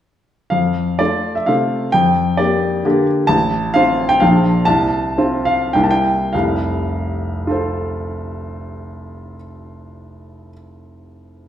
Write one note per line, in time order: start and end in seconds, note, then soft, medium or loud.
0.50 0.98 F2 soft
0.50 0.99 F5 medium
0.99 1.45 A3 soft
0.99 1.45 F4 soft
0.99 1.36 D5 medium
1.35 1.48 E5 medium
1.46 1.90 C3 soft
1.46 1.90 A3 soft
1.46 1.90 F4 soft
1.46 1.93 F5 medium
1.92 2.38 F2 medium
1.92 2.39 G5 medium
2.37 2.81 A#3 soft
2.37 2.81 G4 medium
2.37 3.06 D5 medium
2.85 3.25 D3 medium
2.85 3.25 A#3 medium
2.85 3.25 G4 medium
3.27 3.73 A1 medium
3.27 3.74 A5 medium
3.74 4.18 C4 medium
3.74 4.18 F4 medium
3.74 4.10 F5 medium
4.09 4.21 G5 medium
4.20 4.66 A#1 medium
4.20 4.63 F3 soft
4.20 4.63 D4 soft
4.20 4.64 F4 soft
4.20 4.66 F5 medium
4.65 5.16 C2 medium
4.65 5.46 A5 medium
5.18 5.71 C4 medium
5.18 5.71 F4 medium
5.45 5.74 F5 medium
5.73 6.32 C2 medium
5.73 6.30 G3 soft
5.73 6.30 A#3 soft
5.73 6.31 E4 soft
5.73 5.83 G5 medium
5.84 5.92 A5 medium
5.91 6.33 G5 medium
6.33 9.36 F1 medium
6.33 9.36 C2 medium
6.33 9.34 F5 medium
7.47 10.49 F4 soft
7.47 10.51 A4 soft
7.47 10.53 C5 soft